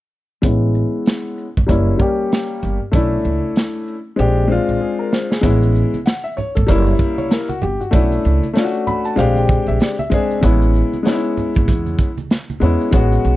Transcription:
0.42 A1 G#3 B3 C#4 E4, kick, closed hi-hat
0.75 shaker
1.06 snare, closed hi-hat
1.38 shaker
1.57 G#1, kick
1.67 F#1 G3 A#3 C#4 E4, kick, closed hi-hat
1.98 G3 A#3 C#4 G4, kick, shaker
2.32 snare, closed hi-hat
2.63 G1, closed hi-hat, shaker
2.92 B1 A3 C#4 D4, kick, closed hi-hat
2.96 E4
3.25 C#2, shaker
3.56 snare, closed hi-hat
3.88 shaker
4.16 A#1 G#3 C4 D4 G4
4.48 G#3 C4 D4 F4
4.69 A#1
4.81 G#4
4.99 A#4
5.12 C5, snare
5.31 G#4, snare
5.41 A1 G#3 B3 C#4 E4, kick, closed hi-hat, maracas
5.62 maracas
5.75 shaker, maracas
5.94 high conga, maracas
6.06 F#5, snare, closed hi-hat, maracas
6.24 E5, maracas
6.37 C#5, low conga, shaker, maracas
6.55 G#1 A4, kick, maracas
6.67 F#1 G3 A#3 C#4, kick, closed hi-hat, high conga, low conga, maracas
6.71 E4
6.87 high conga, maracas
6.99 kick, shaker, maracas
7.18 C#5, high conga, maracas
7.31 A#4, snare, closed hi-hat, maracas
7.49 F#4, high conga, maracas
7.61 G1 G4, low conga, shaker, maracas
7.81 F#4, maracas
7.91 B1 A3 C#4 D4 E4, kick, closed hi-hat, maracas
8.12 maracas
8.24 C#2, shaker, maracas
8.43 high conga, maracas
8.53 A3 C#4 D4 F4, snare, closed hi-hat, maracas
8.64 F#4
8.74 maracas
8.87 B5, low conga, shaker, maracas
9.04 A5, maracas
9.16 A#1 G#3 C4 D4 G4 F5, closed hi-hat, high conga, low conga, maracas
9.36 G5, high conga, maracas
9.49 kick, maracas, shaker
9.67 A#1 E5, high conga, maracas
9.80 D5, snare, closed hi-hat, maracas
9.99 E5, high conga, maracas
10.10 G#3 C4 D4 G#4, kick, closed hi-hat, low conga, maracas, shaker
10.30 maracas
10.41 A1 G#3 B3 C#4 E4, kick, closed hi-hat, maracas
10.62 maracas
10.74 shaker, maracas
10.93 high conga, maracas
11.03 G#3 B3 C#4 D#4, snare, closed hi-hat, maracas
11.14 E4
11.24 maracas
11.37 low conga, shaker, maracas
11.55 G#1, kick, maracas
11.68 E2, kick, closed hi-hat, high conga, low conga, maracas
11.86 high conga, maracas
11.99 kick, closed hi-hat, shaker, maracas
12.18 high conga, maracas
12.31 snare, closed hi-hat, maracas
12.50 high conga, maracas
12.60 E2 G#3 B3 C#4 E4, closed hi-hat, low conga, shaker, maracas
12.81 maracas
12.91 A1 G#3 B3 C#4 F#4, kick, closed hi-hat, maracas
13.12 maracas
13.24 B1, shaker, maracas

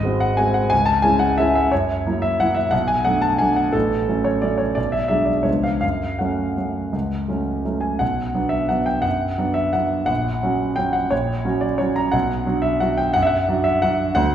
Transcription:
Already playing: G#1 D#5
0.03 G#3 C4 F#4
0.20 F#5
0.37 G#3 C4 F#4 G#5
0.54 F#5
0.70 C#2 G#5
0.86 A5
1.02 G#3 C#4 E4 G#5
1.19 F#5
1.38 G#3 C#4 E4 E5
1.55 E5
1.72 F#2 C#5
2.06 F#3 A#3 E4
2.22 E5
2.40 F#3 A#3 E4 F#5
2.54 E5
2.71 B1 F#5
2.88 G#5
3.05 F#3 A3 D4 F#5
3.22 A5
3.38 F#3 A3 D4 G#5
3.56 F#5
3.72 A1 A4
4.08 F#3 A3 C#4
4.24 C#5
4.42 F#3 A3 C#4 D5
4.58 C#5
4.75 B1 D5
4.92 E5
5.08 F#3 G#3 D4 E5
5.25 D5
5.43 C#2 F3 B3 D4 C#5
5.63 F5
5.81 F#2 F5
6.19 F#3 A3 C#4 F#5
6.57 F#3 A3 C#4
6.93 C#2
7.28 F#3 A3 C#4
7.65 F#3 A3 C#4
7.81 G#5
7.99 B1 F#5
8.35 F#3 B3 D4
8.49 E5
8.69 F#3 B3 D4 F#5
8.86 G5
9.02 F#2 F#5
9.38 F#3 B3 D4
9.54 E5
9.73 F#3 B3 D4 F#5
10.06 A#1 F#5
10.43 F#3 C#4 F#4
10.76 F#3 C#4 F#4 G5
10.93 F#5
11.11 A#1 C#5
11.45 F#3 C#4 F#4
11.61 D5
11.78 F#3 C#4 F#4 C#5
11.96 A#5
12.12 B1 F#5
12.46 F#3 D4 F#4
12.62 E5
12.80 F#3 D4 F#4 F#5
12.97 G5
13.13 F#2 F#5
13.22 E5
13.27 F#5
13.48 F#3 D4 F#4
13.64 E5
13.82 F#3 D4 F#4 F#5
14.15 D2 F#5

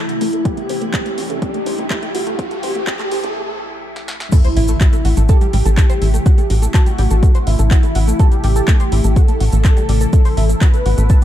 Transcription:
Already playing: C3 E3 A3 E4, riser
0.09 E3, closed hi-hat
0.21 A1 A3, open hi-hat
0.33 A4, closed hi-hat
0.45 C4 G4, kick, closed hi-hat
0.57 A3, closed hi-hat
0.69 A1 C5, open hi-hat
0.82 A3, closed hi-hat
0.94 A3, kick, clap, closed hi-hat
1.06 A3, closed hi-hat
1.18 A1 F#4, open hi-hat
1.30 A1 A3, closed hi-hat
1.42 C4 G4, kick, closed hi-hat
1.54 A3, closed hi-hat
1.66 A1 C5, open hi-hat
1.78 A1 A3, closed hi-hat
1.90 A3, kick, clap, closed hi-hat
2.03 A3, closed hi-hat
2.15 A1 F#4, open hi-hat
2.27 A3, closed hi-hat
2.39 C4 G4, kick, closed hi-hat
2.51 A3, closed hi-hat
2.63 A1 C5, open hi-hat
2.75 A3, closed hi-hat
2.87 C4 G4, kick, clap, closed hi-hat
2.99 A3, clap, closed hi-hat
3.11 A1 C5, open hi-hat
3.24 A1 A3, closed hi-hat
3.96 snare
4.08 snare
4.20 snare
4.32 C3 E3 A3 E4 A4, kick, closed hi-hat, crash, impact, shaker
4.45 C5 C6, closed hi-hat, shaker
4.57 A1 E4 E5, open hi-hat
4.68 A3 A4, closed hi-hat, shaker
4.81 F#4 F#5, kick, clap, closed hi-hat, shaker
4.93 A3 A4, closed hi-hat, shaker
5.05 A1 F#4 F#5, open hi-hat
5.17 A1 A3 A4, closed hi-hat, shaker
5.29 G4 A4 A5, kick, closed hi-hat, shaker
5.41 G3 G4, closed hi-hat, shaker
5.53 A1 G3 G4, open hi-hat
5.65 A1 A4 A5, closed hi-hat, shaker
5.78 A3 A4, kick, clap, closed hi-hat, shaker
5.90 C5 C6, closed hi-hat, shaker
6.02 A1 E4 E5, open hi-hat
6.14 A3 A4, closed hi-hat, shaker
6.26 F#4 F#5, kick, closed hi-hat, shaker
6.38 A3 A4, closed hi-hat, shaker
6.50 A1 F#4 F#5, open hi-hat
6.62 A3 A4, closed hi-hat, shaker
6.74 F#4 A4 A5, kick, clap, closed hi-hat, shaker
6.86 G3 G4, closed hi-hat, shaker
6.98 A1 G3 G4, open hi-hat
7.11 A1 A4 A5, closed hi-hat, shaker
7.23 A3 A4, kick, closed hi-hat, shaker
7.35 C5 C6, closed hi-hat, shaker
7.47 A1 E4 E5, open hi-hat
7.59 A1 A3 A4, closed hi-hat, shaker
7.71 F#4 F#5, kick, clap, closed hi-hat, shaker
7.83 A3 A4, closed hi-hat, shaker
7.95 A1 F#4 F#5, open hi-hat
8.07 A3 A4, closed hi-hat, shaker
8.19 G4 A4 A5, kick, closed hi-hat, shaker
8.32 G3 G4, closed hi-hat, shaker
8.44 A1 G3 G4, open hi-hat
8.56 A4 A5, closed hi-hat, shaker
8.68 A3 A4, kick, clap, closed hi-hat, shaker
8.80 C5 C6, closed hi-hat, shaker
8.92 A1 E4 E5, open hi-hat
9.04 A1 A3 A4, closed hi-hat, shaker
9.16 F#4 A4 F#5, kick, closed hi-hat, shaker
9.28 A3 A4, closed hi-hat, shaker
9.40 A1 F#4 F#5, open hi-hat
9.52 A1 A3 A4, closed hi-hat, shaker
9.65 A4 A5, kick, clap, closed hi-hat, shaker
9.77 G3 G4, closed hi-hat, shaker
9.89 A1 G3 G4, open hi-hat
10.01 A4 A5, closed hi-hat, shaker
10.13 A3 A4, kick, closed hi-hat, shaker
10.25 C5 C6, open hi-hat, shaker
10.37 A1 E4 E5, open hi-hat
10.49 A3 A4, closed hi-hat, shaker
10.61 F#4 B4 F#5, kick, clap, closed hi-hat, shaker
10.74 A3 A4, closed hi-hat, shaker
10.86 A1 F#4 F#5, open hi-hat
10.98 A1 A3 A4, closed hi-hat, shaker
11.10 A4 A5, kick, closed hi-hat, shaker

